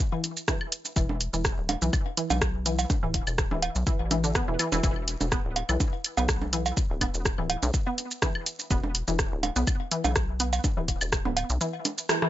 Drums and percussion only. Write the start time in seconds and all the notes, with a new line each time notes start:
0.24 closed hi-hat, shaker
0.37 shaker
0.48 kick, cross-stick, low bongo, shaker
0.61 high woodblock
0.72 closed hi-hat, shaker
0.85 shaker
0.96 kick, shaker
1.09 low bongo
1.21 closed hi-hat, shaker
1.33 shaker
1.45 kick, cross-stick, shaker
1.69 closed hi-hat, cowbell, low bongo
1.82 shaker
1.93 kick, high woodblock, shaker
2.17 closed hi-hat, shaker
2.30 cowbell, low bongo, shaker
2.42 kick, cross-stick, shaker
2.66 closed hi-hat, shaker
2.79 cowbell, shaker
2.90 kick, low bongo, shaker
3.14 kick, closed hi-hat, shaker
3.27 high woodblock, shaker
3.38 kick, cross-stick, shaker
3.51 low bongo
3.62 closed hi-hat, cowbell
3.75 shaker
3.87 kick, shaker
4.11 closed hi-hat, low bongo, shaker
4.24 shaker
4.35 kick, cross-stick, shaker
4.59 closed hi-hat, high woodblock, shaker
4.72 low bongo, shaker
4.83 kick, shaker
5.08 closed hi-hat, shaker
5.21 low bongo, shaker
5.32 kick, cross-stick, shaker
5.56 closed hi-hat, cowbell
5.69 high woodblock, shaker
5.80 kick, low bongo, shaker
6.04 closed hi-hat, shaker
6.17 cowbell, shaker
6.29 kick, cross-stick, shaker
6.42 low bongo
6.53 closed hi-hat, shaker
6.66 cowbell, shaker
6.77 kick, shaker
7.01 kick, closed hi-hat, low bongo, high woodblock, shaker
7.14 shaker
7.25 kick, cross-stick, shaker
7.50 closed hi-hat, cowbell
7.63 low bongo, shaker
7.74 kick, shaker
7.98 closed hi-hat, shaker
8.11 shaker
8.22 kick, cross-stick, low bongo, shaker
8.35 high woodblock
8.46 closed hi-hat, shaker
8.59 shaker
8.71 kick, shaker
8.84 low bongo
8.95 closed hi-hat, shaker
9.08 shaker
9.19 kick, cross-stick, shaker
9.43 closed hi-hat, cowbell, low bongo
9.56 shaker
9.67 kick, high woodblock, shaker
9.91 closed hi-hat, shaker
10.04 cowbell, low bongo, shaker
10.16 kick, cross-stick, shaker
10.40 closed hi-hat, shaker
10.53 cowbell, shaker
10.64 kick, low bongo, shaker
10.88 kick, closed hi-hat, shaker
11.01 high woodblock, shaker
11.12 kick, cross-stick, shaker
11.25 low bongo
11.37 closed hi-hat, cowbell, shaker
11.50 shaker
11.61 shaker
11.85 closed hi-hat, low bongo, shaker
11.98 shaker
12.09 cross-stick, shaker
12.22 cross-stick